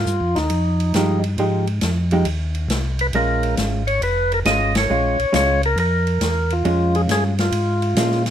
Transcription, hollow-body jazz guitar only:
0.95 1.21 F3 medium
0.95 1.21 G#3 medium
0.95 1.22 D#4 medium
0.95 1.22 G4 medium
1.39 1.65 F3 soft
1.39 1.65 G#3 medium
1.39 1.65 D#4 medium
1.39 1.65 G4 medium
2.12 2.25 F3 medium
2.12 2.25 G#3 medium
2.12 2.25 D#4 medium
2.12 2.25 G4 medium
3.15 3.82 G#3 medium
3.15 3.82 C#4 soft
3.15 3.82 F4 medium
4.46 4.72 G#3 soft
4.46 4.72 C#4 soft
4.46 4.72 F4 medium
4.90 5.16 G#3 soft
4.90 5.16 C#4 medium
4.90 5.17 F4 soft
5.33 5.59 G#3 medium
5.33 5.59 C#4 medium
5.33 5.60 F4 medium
6.65 7.32 G#3 soft
6.65 7.32 C#4 medium
6.65 7.33 F4 medium
7.97 8.23 G#3 medium
7.97 8.23 C#4 medium
7.97 8.23 F4 medium

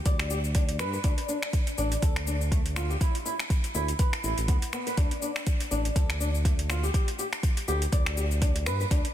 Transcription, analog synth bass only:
0.06 0.81 D2 loud
0.79 0.98 G2 medium
1.04 1.14 D2 loud
1.78 1.96 A1 loud
2.02 2.96 D2 medium
3.75 3.93 D2 loud
4.24 4.34 A1 medium
4.38 4.50 A1 medium
4.48 4.58 D2 loud
4.97 5.07 D2 medium
5.71 5.90 A1 loud
5.96 6.89 D2 medium
7.68 7.86 D2 loud
7.92 8.68 D2 loud
8.66 8.85 G2 loud
8.91 9.01 D2 loud

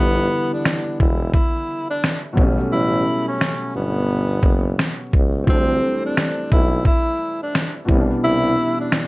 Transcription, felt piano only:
0.00 2.31 D3 medium
0.00 2.32 E3 medium
0.00 2.33 G3 medium
0.00 2.34 B3 soft
0.00 2.35 E4 medium
2.33 5.07 B2 medium
2.33 5.08 F#3 medium
2.33 5.09 G3 medium
2.39 5.10 A3 medium
2.39 5.11 C#4 medium
5.44 7.84 E3 medium
5.44 7.83 C4 medium
5.48 5.56 F#3 soft
5.48 7.86 A3 medium
5.52 7.88 G3 medium
5.52 7.87 D4 medium
7.85 9.07 B2 medium
7.85 9.07 E3 medium
7.90 9.07 G3 medium
7.90 9.07 B3 medium
7.90 7.99 C#4 medium
8.00 9.07 D4 medium

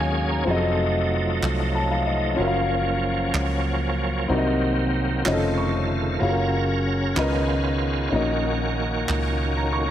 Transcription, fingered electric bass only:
0.00 0.43 D#2 medium
0.47 1.39 F1 loud
1.43 2.34 C2 medium
2.38 3.30 F#1 loud
3.34 4.25 C#2 medium
4.29 5.21 C2 loud
5.25 6.17 F1 loud
6.21 7.13 F#1 loud
7.16 8.08 C#2 loud
8.12 9.04 A#1 loud
9.09 9.91 C#2 loud

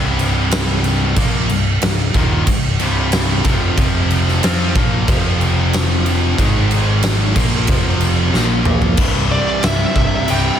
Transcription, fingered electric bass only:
0.00 1.13 C1 loud
1.16 1.47 A#1 loud
1.49 1.80 C1 medium
1.82 2.13 C1 medium
2.14 2.45 D#1 loud
2.47 2.78 C1 medium
2.80 3.42 C1 loud
3.45 3.76 F1 loud
3.77 4.39 F1 medium
4.43 4.74 F2 loud
4.75 5.06 A#1 loud
5.08 6.35 F1 loud
6.38 7.32 G#1 loud
7.35 7.66 A#1 medium
7.68 8.30 F1 medium
8.33 8.94 A#1 loud
8.97 9.38 C1 loud
9.64 9.84 C1 loud
9.95 10.16 C1 loud
10.29 10.49 C1 loud

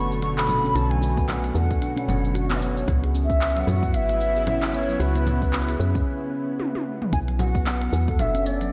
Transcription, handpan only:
0.00 0.10 B3 medium
0.11 0.22 B3 medium
0.23 0.36 F#4 medium
0.38 0.49 A4 medium
0.49 0.63 D4 medium
0.64 0.71 C#4 medium
0.76 0.90 B3 medium
0.91 1.01 F#3 medium
1.02 1.16 F#4 loud
1.17 1.27 B3 loud
1.28 1.43 B3 medium
1.44 1.55 B3 medium
1.55 1.69 F#4 medium
1.71 1.81 A4 medium
1.82 1.95 D4 medium
1.96 2.03 C#4 loud
2.08 2.22 B3 medium
2.23 2.33 F#3 medium
2.34 2.49 F#4 loud
2.50 2.60 B3 loud
2.61 2.75 B3 loud
2.76 2.87 B3 medium
2.88 3.02 F#4 medium
3.03 3.14 G#4 medium
3.14 3.28 C#4 medium
3.30 3.36 C#4 loud
3.41 3.55 B3 medium
3.56 3.66 F#3 medium
3.67 3.82 F#4 loud
3.83 3.93 B3 loud
3.94 4.09 B3 medium
4.10 4.20 B3 medium
4.21 4.34 F#4 medium
4.36 4.47 G#4 medium
4.47 4.61 C#4 medium
4.62 4.69 C#4 loud
4.73 4.87 B3 medium
4.89 4.99 F#3 medium
5.00 5.15 F#4 loud
5.15 5.25 B3 loud
5.26 5.41 B3 medium
5.42 5.53 B3 medium
5.53 5.67 F#4 medium
5.68 5.79 G#4 medium
5.80 5.94 C#4 medium
5.95 6.01 C#4 loud
7.13 7.27 B3 medium
7.28 7.38 F#3 medium
7.39 7.54 F#4 medium
7.55 7.65 B3 medium
7.66 7.80 B3 loud
7.81 7.92 B3 medium
7.93 8.06 F#4 medium
8.09 8.19 A4 medium
8.20 8.33 D4 medium
8.35 8.41 C#4 loud
8.46 8.59 B3 medium
8.62 8.71 F#3 medium

